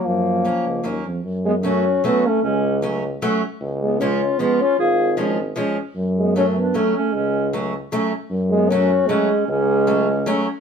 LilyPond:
<<
  \new Staff \with { instrumentName = "Clarinet" } { \time 3/4 \key fis \major \tempo 4 = 153 ais2~ ais8 r8 | \key fis \minor r8 b8 fis'4 fis'8 cis'8 | cis'4 r2 | r8 b8 eis'4 eis'8 eis'8 |
gis'4 r2 | r8 b8 fis'8 d'8 cis'8 cis'8 | cis'4 r2 | r8 b8 fis'4 cis'4 |
cis'2~ cis'8 r8 | }
  \new Staff \with { instrumentName = "Euphonium" } { \time 3/4 \key fis \major eis2~ eis8 r8 | \key fis \minor r8 gis8 cis'4 b8 a8 | gis4 r2 | r8 gis8 cis'4 b8 cis'8 |
eis'4 r2 | r8 gis8 cis'8 b8 a8 a8 | gis4 r2 | r8 gis8 cis'4 gis4 |
gis2~ gis8 r8 | }
  \new Staff \with { instrumentName = "Steel-string acoustic guitar" } { \time 3/4 \key fis \major r4 <fis ais cis'>8 r8 <fis ais cis'>8 r8 | \key fis \minor r4 <fis a cis'>8 r8 <fis a cis'>8 r8 | r4 <fis a cis'>8 r8 <fis a cis'>8 r8 | r4 <eis gis cis'>8 r8 <eis gis cis'>8 r8 |
r4 <eis gis cis'>8 r8 <eis gis cis'>8 r8 | r4 <fis a cis'>8 r8 <fis a cis'>8 r8 | r4 <fis a cis'>8 r8 <fis a cis'>8 r8 | r4 <fis a cis'>8 r8 <fis a cis'>8 r8 |
r4 <fis a cis'>8 r8 <fis a cis'>8 r8 | }
  \new Staff \with { instrumentName = "Tuba" } { \clef bass \time 3/4 \key fis \major fis,4. cis,8 dis,8 eis,8 | \key fis \minor fis,2. | cis,2. | cis,2. |
gis,,2. | fis,2. | cis,2. | fis,2. |
cis,2. | }
>>